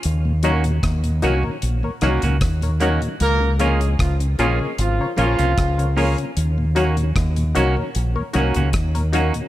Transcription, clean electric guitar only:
X:1
M:4/4
L:1/16
Q:1/4=76
K:Ebdor
V:1 name="Clean electric guitar"
z2 [B,DG] z3 [B,DG] z3 [B,DG] [B,DG] z2 [B,DG] z | z2 [B,DF] z3 [B,DF] z3 [B,DF] [B,DF] z2 [B,DF] z | z2 [B,DG] z3 [B,DG] z3 [B,DG] [B,DG] z2 [B,DG] z |]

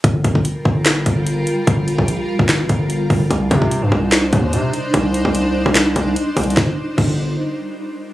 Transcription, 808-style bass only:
X:1
M:4/4
L:1/16
Q:1/4=147
K:Gm
V:1 name="808-style bass" clef=bass
G,,,2 G,,,2 z2 G,,,4 G,,,4 z2 | G,,,3 B,,,2 z2 G,,,2 A,,, G,,,4 G,,,2 | C,,2 C,3 G,, C,,4 E,,2 C,2 z2 | C,,3 C,,4 C,,3 C,,2 z2 C,,2 |
G,,, z3 G,,,4 z8 |]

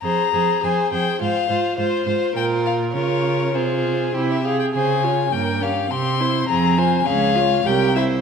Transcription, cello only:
X:1
M:2/4
L:1/8
Q:1/4=102
K:Fm
V:1 name="Cello" clef=bass
F,, F,, F,, F,, | A,, A,, A,, A,, | B,,2 D,2 | C,2 C, z |
D,2 G,,2 | C,2 F,,2 | D,,2 C,,2 |]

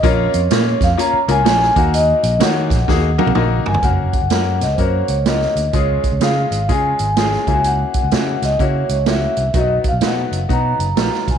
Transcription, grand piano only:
X:1
M:4/4
L:1/8
Q:"Swing" 1/4=126
K:F#
V:1 name="Grand piano"
[A,CEA] z [A,CEc] z [A,CEc] [A,CEA] [A,CEc] [A,DFA]- | [A,DFA] z [A,DFc] z [A,DFG] [A,DFA] [A,DFA] z | [A,CFA] z [A,CFA] z [A,CFA] z [A,CFA] z | [G,CEG] z [G,CEG] z [G,CEG] z [G,CEG] [A,C=E^EF]- |
[A,C=E^EF] z [A,C=EF] z [A,CEF] z [A,CEF] z | [F,B,DF] z [F,B,DF] z [F,B,DF] z [F,B,DE] z |]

